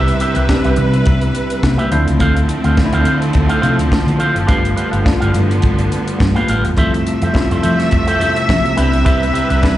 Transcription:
Already playing: fingered electric bass C2, string section C3 G3 B4 E5, tine electric piano G3 B3 C4 D4 E4 B4, clean electric guitar G4 B4 E5
0.08 closed hi-hat
0.20 clean electric guitar G4 B4 E5, closed hi-hat
0.35 fingered electric bass C2, clean electric guitar G4 B4 E5, closed hi-hat
0.48 tine electric piano G3 B3 C4 D4 G4, muted clean electric guitar stroke, kick, snare, high conga
0.64 fingered electric bass C2, clean electric guitar G4 B4 E5, closed hi-hat
0.76 fingered electric bass C3, muted clean electric guitar stroke, closed hi-hat, low conga
0.93 muted clean electric guitar stroke, closed hi-hat
1.05 fingered electric bass C2, muted clean electric guitar stroke, kick, closed hi-hat, muted conga
1.21 muted clean electric guitar stroke, closed hi-hat
1.35 closed hi-hat, muted conga
1.50 muted clean electric guitar stroke, closed hi-hat
1.62 fingered electric bass C3, muted clean electric guitar stroke, kick, snare, high conga
1.78 clean electric guitar G4 B4 E5, closed hi-hat, high conga
1.91 fingered electric bass D2, string section D3 F3 A3 C4, tine electric piano F3 A3 C4 D4 E4, clean electric guitar A4 C5 F5, closed hi-hat
2.07 fingered electric bass C#2, muted clean electric guitar stroke, closed hi-hat
2.20 fingered electric bass D2, clean electric guitar A4 C5 F5, kick, closed hi-hat, muted conga
2.36 muted clean electric guitar stroke, closed hi-hat
2.48 muted clean electric guitar stroke, closed hi-hat
2.64 fingered electric bass D2, clean electric guitar A4 C5 F5, closed hi-hat
2.76 tine electric piano F3 A3 C4 D4 D#4, muted clean electric guitar stroke, kick, snare, high conga
2.85 tine electric piano E4
2.93 fingered electric bass D2, clean electric guitar A4 C5 F5, closed hi-hat
3.04 fingered electric bass D3, clean electric guitar A4 C5 F5, closed hi-hat
3.21 muted clean electric guitar stroke, closed hi-hat
3.33 fingered electric bass D2, muted clean electric guitar stroke, kick, closed hi-hat, muted conga
3.49 clean electric guitar A4 C5 F5, closed hi-hat
3.61 fingered electric bass C3, clean electric guitar A4 C5 F5, closed hi-hat, muted conga, low conga
3.78 fingered electric bass D2, muted clean electric guitar stroke, closed hi-hat
3.92 kick, snare, high conga
4.07 fingered electric bass D3, muted clean electric guitar stroke, closed hi-hat, high conga
4.18 clean electric guitar A4 C5 F5, closed hi-hat
4.35 fingered electric bass F#1, muted clean electric guitar stroke, closed hi-hat
4.47 fingered electric bass G1, string section D3 G3 B3, tine electric piano G3 A3 B3 D4 F4, clean electric guitar G4 B4 F5, kick, closed hi-hat, muted conga
4.65 closed hi-hat
4.76 clean electric guitar G4 B4 F5, closed hi-hat
4.91 fingered electric bass G1, clean electric guitar G4 B4 F5, closed hi-hat
5.05 tine electric piano G3 A3 B3 D4 E4, muted clean electric guitar stroke, kick, snare, high conga
5.13 tine electric piano F4
5.20 fingered electric bass G1, clean electric guitar G4 B4 F5, closed hi-hat
5.32 fingered electric bass G2, muted clean electric guitar stroke, closed hi-hat, low conga
5.48 muted clean electric guitar stroke, closed hi-hat
5.61 fingered electric bass G1, muted clean electric guitar stroke, kick, closed hi-hat, muted conga
5.78 muted clean electric guitar stroke, closed hi-hat
5.92 closed hi-hat, muted conga
6.05 muted clean electric guitar stroke, closed hi-hat
6.18 fingered electric bass G2, muted clean electric guitar stroke, kick, snare, high conga
6.35 clean electric guitar G4 B4 F5, closed hi-hat, high conga
6.48 fingered electric bass A1, clean electric guitar G4 B4 F5, closed hi-hat
6.65 fingered electric bass E1, muted clean electric guitar stroke, closed hi-hat
6.77 fingered electric bass F2, string section C3 F3 A3 E5, tine electric piano G3 A3 C4 E4 F4, clean electric guitar A4 C5 E5, kick, closed hi-hat, muted conga
6.94 muted clean electric guitar stroke, closed hi-hat
7.07 muted clean electric guitar stroke, closed hi-hat
7.22 fingered electric bass F2, clean electric guitar A4 C5 E5, closed hi-hat
7.33 tine electric piano G3 A3 C4 E4 F4, muted clean electric guitar stroke, kick, snare, high conga
7.51 fingered electric bass F2, clean electric guitar A4 C5 E5, closed hi-hat
7.62 fingered electric bass F3, clean electric guitar A4 C5 E5, closed hi-hat
7.80 muted clean electric guitar stroke, snare, closed hi-hat
7.91 fingered electric bass F2, muted clean electric guitar stroke, kick, closed hi-hat, muted conga
8.07 clean electric guitar A4 C5 E5, closed hi-hat
8.20 clean electric guitar A4 C5 E5, closed hi-hat, muted conga, low conga
8.36 muted clean electric guitar stroke, closed hi-hat
8.49 fingered electric bass F3, kick, snare, high conga
8.63 muted clean electric guitar stroke, closed hi-hat, high conga
8.76 fingered electric bass C2, tine electric piano G3 B3 C4 D4 E4, string section G3 B4, clean electric guitar G4 B4 E5, closed hi-hat
8.92 fingered electric bass B1, muted clean electric guitar stroke, closed hi-hat
9.05 fingered electric bass C2, clean electric guitar G4 B4 E5, kick, closed hi-hat, muted conga
9.23 closed hi-hat
9.33 clean electric guitar G4 B4 E5, closed hi-hat
9.50 fingered electric bass C2, clean electric guitar G4 B4 E5, closed hi-hat
9.61 tine electric piano G3 B3 C4 D4 E4, kick, snare, high conga

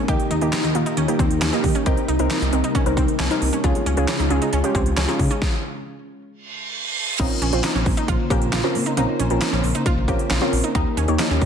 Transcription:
Already playing: string machine D#4
0.08 analog synth bass D#2, string machine D#3 G4 A#4, synth pluck A#3 D#4 G4, synth arpeggio sound G4, kick, closed hi-hat
0.20 closed hi-hat
0.31 analog synth bass D#2, synth arpeggio sound D#4, closed hi-hat
0.41 analog synth bass D#2, synth pluck A#3 D#4 G4, closed hi-hat
0.53 synth arpeggio sound D#4, snare, clap, closed hi-hat
0.64 analog synth bass D#2, synth arpeggio sound D#4, closed hi-hat
0.75 analog synth bass D#2, synth pluck A#3 D#4 F4, closed hi-hat
0.86 synth arpeggio sound D#4, closed hi-hat
0.97 analog synth bass D#2, synth arpeggio sound C#4, closed hi-hat
1.08 synth pluck A#3 D#4 G4, closed hi-hat
1.19 analog synth bass D#2, synth arpeggio sound C4, kick, closed hi-hat
1.31 analog synth bass D#2, closed hi-hat
1.42 analog synth bass D#2, synth arpeggio sound C#4, snare, clap, closed hi-hat
1.53 synth pluck A#3 D#4 G4, synth arpeggio sound D#4, closed hi-hat
1.64 analog synth bass D#3, kick, open hi-hat
1.75 synth arpeggio sound C#4, closed hi-hat
1.86 analog synth bass C2, string machine C3 G3 A#3, synth pluck C4 D#4 A#4, synth arpeggio sound G4, kick, closed hi-hat
1.97 closed hi-hat
2.08 analog synth bass C2, synth arpeggio sound D#4, closed hi-hat
2.19 analog synth bass C2, synth pluck C4 D#4 A#4, closed hi-hat
2.31 synth arpeggio sound D#4, snare, clap, closed hi-hat
2.42 analog synth bass C2, synth arpeggio sound D#4, closed hi-hat
2.53 analog synth bass C2, synth pluck C4 D#4 A#4, closed hi-hat
2.64 synth arpeggio sound D#4, closed hi-hat
2.75 synth arpeggio sound C#4, kick, closed hi-hat
2.86 analog synth bass C2, synth pluck C4 D#4 A#4, closed hi-hat
2.97 analog synth bass C2, synth arpeggio sound C4, kick, closed hi-hat
3.08 closed hi-hat
3.19 analog synth bass C2, synth arpeggio sound C#4, snare, clap, closed hi-hat
3.31 synth pluck C4 D#4 A#4, synth arpeggio sound D#4, closed hi-hat
3.42 analog synth bass C2, open hi-hat
3.53 synth arpeggio sound C#4, closed hi-hat
3.64 analog synth bass C#2, string machine C#3 G#3 C#4 F4, synth pluck C#4 F4 G#4, synth arpeggio sound F4, kick, closed hi-hat
3.75 closed hi-hat
3.86 analog synth bass C#2, synth arpeggio sound C#4, closed hi-hat
3.97 analog synth bass C#2, synth pluck C#4 F4 G#4, closed hi-hat
4.08 synth arpeggio sound C#4, snare, clap, closed hi-hat
4.20 analog synth bass C#2, synth arpeggio sound D#4, closed hi-hat
4.30 analog synth bass C#2, synth pluck C#4 F4 G#4, closed hi-hat
4.42 synth arpeggio sound D#4, closed hi-hat
4.53 analog synth bass C#2, synth arpeggio sound C#4, closed hi-hat
4.64 synth pluck C#4 F4 G4, closed hi-hat
4.75 analog synth bass C#2, synth arpeggio sound C4, kick, closed hi-hat
4.86 analog synth bass C#2, closed hi-hat
4.97 analog synth bass C#2, synth arpeggio sound C#4, snare, clap, closed hi-hat
5.08 synth pluck C#4 F4 G#4, synth arpeggio sound D#4, closed hi-hat
5.19 analog synth bass C#3, kick, open hi-hat
5.31 synth arpeggio sound C#4, closed hi-hat
5.42 kick, snare
6.31 reverse cymbal
7.19 analog synth bass A#1, string machine C#3 A#3 C5, synth pluck C4 C#4 F4 A#4, synth arpeggio sound D#4, kick, closed hi-hat, crash
7.42 analog synth bass A#1, synth arpeggio sound C#4, closed hi-hat
7.53 analog synth bass A#1, synth pluck C4 C#4 F4 C5, closed hi-hat
7.64 synth arpeggio sound D#4, snare, clap, closed hi-hat
7.75 analog synth bass A#1, synth arpeggio sound C#4
7.86 analog synth bass A#1, kick, open hi-hat
7.97 synth arpeggio sound D#4, closed hi-hat
8.08 analog synth bass A#1, synth arpeggio sound F4, kick, closed hi-hat
8.30 analog synth bass A#1, synth pluck C4 C#4 F4 A#4, synth arpeggio sound G4, kick, closed hi-hat
8.42 analog synth bass A#1, closed hi-hat
8.53 analog synth bass A#1, synth arpeggio sound F4, snare, clap, closed hi-hat
8.64 synth pluck C4 C#4 F4 A#4, synth arpeggio sound F4
8.75 analog synth bass A#2, open hi-hat
8.86 synth arpeggio sound D#4, closed hi-hat
8.97 analog synth bass A#1, synth pluck C4 C#4 F4 A#4, synth arpeggio sound D#4, closed hi-hat
9.19 analog synth bass A#1, synth arpeggio sound C#4, closed hi-hat
9.30 analog synth bass A#1, synth pluck C4 C#4 F4 A#4, closed hi-hat
9.41 synth arpeggio sound D#4, snare, clap, closed hi-hat
9.53 analog synth bass A#1, synth arpeggio sound C#4
9.64 analog synth bass A#1, open hi-hat
9.75 synth arpeggio sound D#4, closed hi-hat
9.86 synth arpeggio sound F4, kick, closed hi-hat
9.97 analog synth bass A#1
10.08 analog synth bass A#1, synth pluck C4 C#4 F4 A#4, synth arpeggio sound G4, kick, closed hi-hat
10.19 closed hi-hat
10.30 analog synth bass A#1, synth arpeggio sound F4, snare, clap, closed hi-hat
10.42 synth pluck C4 C#4 F4 A#4, synth arpeggio sound F4
10.53 analog synth bass A#1, open hi-hat
10.64 synth arpeggio sound D#4, closed hi-hat
10.75 analog synth bass D#2, string machine D#3 D#4 G4 A#4, synth pluck A#3 D#4 G4 A#4, synth arpeggio sound D#4, kick, closed hi-hat
10.97 analog synth bass D#2, synth arpeggio sound C#4, closed hi-hat
11.08 analog synth bass D#2, synth pluck A#3 D#4 G4 C#5, closed hi-hat
11.19 synth arpeggio sound D#4, snare, clap, closed hi-hat
11.31 analog synth bass D#2, synth arpeggio sound C#4
11.41 analog synth bass D#2, kick, open hi-hat

